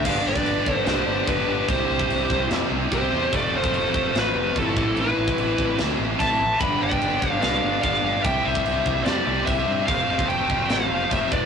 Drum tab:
CC |x---x---x---x---|x---x---x---x---|x---x---x---x---|x---x---x---x---|
SD |--------o-------|--------o-------|--------o-------|--------o-------|
BD |o--o--o-----o---|o--o--o-----o---|o--o--o-----o-o-|---o--o-----o---|

CC |x---x---x---x---|x---x---x---x---|x---x---x---x---|
SD |--------o-------|--------o-------|--------o-------|
BD |o--o--o-----o---|o--o--o-----o---|o--o--o-----o-o-|